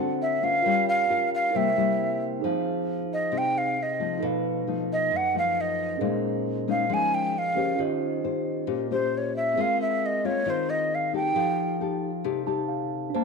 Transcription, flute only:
0.22 E5
0.44 F5
0.89 F5
1.35 F5
1.56 E5
3.13 D#5
3.38 G5
3.58 F5
3.83 D#5
4.93 D#5
5.16 F#5
5.38 F5
5.61 D#5
6.70 F5
6.94 G#5
7.14 G5
7.38 F5
8.92 C5
9.17 C#5
9.36 E5
9.61 F5
9.82 E5
10.06 D#5
10.26 C#5
10.50 C5
10.70 D#5
10.95 F5
11.16 G5

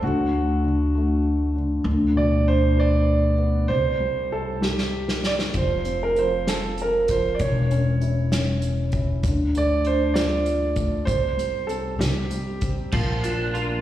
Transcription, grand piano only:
0.04 F#4
2.17 D5
2.48 C5
2.80 D5
3.68 C5
4.32 A4
4.62 G4
5.26 D5
5.57 C5
6.03 A#4
6.19 C5
6.49 A4
6.82 A#4
7.10 C5
7.35 D5
7.41 C#5
9.58 D5
9.87 C5
10.14 D5
11.05 C5
11.67 A4
11.99 G4

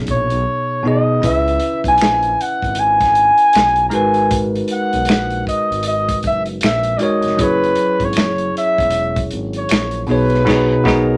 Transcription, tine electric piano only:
0.83 B2 B3 D#4 G#4
0.88 D#5
1.21 C#3 C#4 E4 B4
1.25 E5
3.90 G#3 D#4 F#4 A#4
3.95 B4
6.98 G#3 D#4 F#4 A#4
7.03 C#5
7.37 F#3 C#4 E4 G#4
7.42 C#5
10.07 B2 B3 D#4 G#4
10.11 C#5
10.45 B2 B3 D#4 G#4
10.84 B2 B3 D#4 G#4

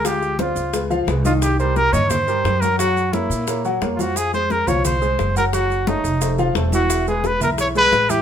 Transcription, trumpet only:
0.06 G4
0.40 F4
1.26 F4
1.43 G4
1.60 C5
1.77 A#4
1.93 C#5
2.10 C5
2.61 A#4
2.78 F#4
3.13 E4
3.96 F4
4.01 F#4
4.17 G#4
4.35 C5
4.52 A#4
4.68 C#5
4.86 C5
5.38 A#4
5.54 F#4
5.88 D#4
6.75 F#4
7.09 G#4
7.27 B4
7.43 A#4
7.61 C#5
7.77 B4
8.11 G4

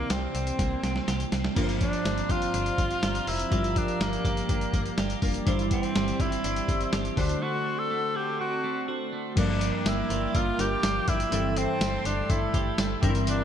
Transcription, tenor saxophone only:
Already playing: A#3
0.11 C4
1.82 D4
2.31 F4
3.29 E4
3.78 D4
4.02 A#3
5.72 C4
6.21 E4
7.19 D4
7.43 F#4
7.79 A4
8.16 G4
8.40 F#4
9.39 D4
9.88 E4
10.36 F4
10.61 G4
11.09 E4
11.58 C4
12.06 D4
12.31 E4
13.28 D4

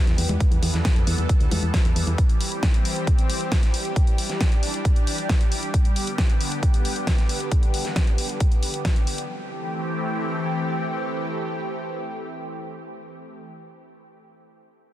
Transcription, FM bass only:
0.07 E2
0.18 E2
0.29 E2
0.51 E2
0.62 E2
0.74 E2
0.96 F2
1.07 E2
1.18 E2
1.40 D2
1.52 E2
1.63 E2
1.85 E2
1.96 E2
2.07 E2

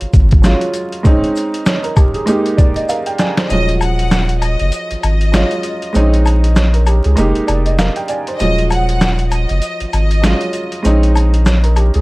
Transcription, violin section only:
3.51 D#5
3.82 F#5
4.41 D#5
5.02 D#5
8.39 D#5
8.72 F#5
9.31 D#5
9.91 D#5

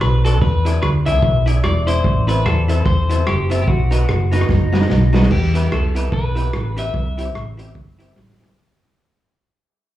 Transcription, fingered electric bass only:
0.02 B1
0.42 E2
0.83 D2
1.07 C2
1.23 B1
1.65 E1
2.05 A1
2.46 E2
2.86 E2
3.27 F#1
3.68 B1
4.09 F#1
4.49 F#1
4.91 B1
5.31 E2
5.72 C2
6.13 B1
6.54 A1
6.94 C2
7.36 A1
7.76 G1
8.17 A1
8.41 G1

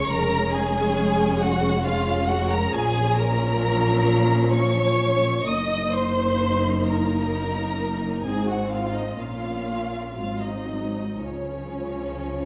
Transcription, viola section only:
0.10 G#3 C#4
1.84 G#3 C#4
2.73 F3 C#4
5.46 A#3 D#4
8.25 C4
9.20 A#3 C#4
10.18 F#3 C4
11.20 F3 C#4

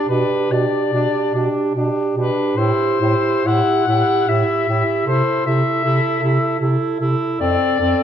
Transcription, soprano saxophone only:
0.09 B4
0.52 D5
2.15 B4
2.57 C5
3.47 F#5
4.29 E5
5.07 C5
5.46 E5
7.40 D5

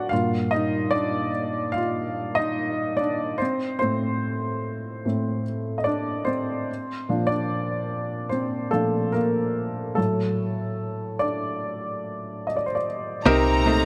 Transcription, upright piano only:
Already playing: D4 F#4 D5 F#5
0.09 G2 A#2 A#3 F4 F5
0.51 D#4 D#5
0.91 D5
0.95 D4
1.72 F4 F5
2.35 D#4 D#5
2.97 D4 D5
3.38 C5
3.42 C4
3.79 A2 A3 C4 C5
5.05 A2 A3 C4
5.78 D#5
5.84 D4 D5
6.25 C4 C5
7.09 A#2 F3 D4
7.27 D4 D5
8.29 C4 C5
8.71 A#2 F3 A3 D4 A4
9.12 A#3 A#4
9.95 A2 F#3 A3 A4
11.19 D4 D5
12.47 D#5
12.56 D5
12.66 C5
12.75 D5
13.25 C3 C4 D#4 G4 A#4
13.66 A3 C4 D#4 G4

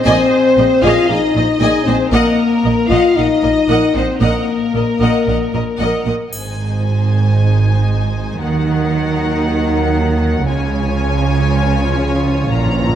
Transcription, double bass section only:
0.06 A#1
0.57 A#1
0.82 A#1
1.08 A#1
1.35 A#1
1.60 A#1
1.86 A#1
2.12 A#1
2.64 A#1
2.91 A#1
3.17 A#1
3.43 A#1
3.68 A#1
3.95 A#1
4.21 A#1
4.73 A#1
5.00 A#1
5.28 A#1
5.53 A#1
5.79 A#1
6.06 A#1
6.32 G#1
8.39 D#2
10.45 C#2
12.52 A#1

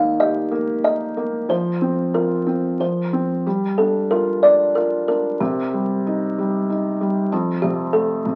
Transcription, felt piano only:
Already playing: D#3 A#3
0.20 G4
0.51 A#3
0.84 A#4
1.17 A#3
1.49 F3
1.82 C4
2.14 F4
2.47 C4
2.80 F3
3.13 C4
3.47 G3
3.80 D4
4.12 F4
4.44 D4
4.76 F4
5.08 D4
5.40 C3
5.74 G3
6.07 D#4
6.39 G3
6.70 D#4
7.01 G3
7.32 F2
7.64 C3
7.94 A3
8.26 C3

